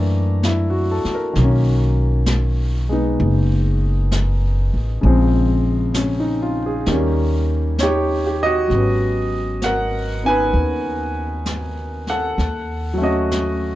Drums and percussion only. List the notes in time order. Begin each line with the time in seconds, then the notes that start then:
0.43 brush sweep, snare, hi-hat pedal
1.05 snare
1.35 brush sweep, snare
2.26 brush sweep, snare, hi-hat pedal
3.20 brush sweep
4.11 brush sweep, snare, hi-hat pedal
5.04 brush sweep
5.94 brush sweep, snare, hi-hat pedal
6.86 brush sweep, snare
7.78 brush sweep, snare, hi-hat pedal
8.71 brush sweep, snare
9.62 brush sweep, snare, hi-hat pedal
10.53 brush sweep
11.46 brush sweep, snare, hi-hat pedal
12.07 snare
12.39 brush sweep, snare
13.31 brush sweep, snare, hi-hat pedal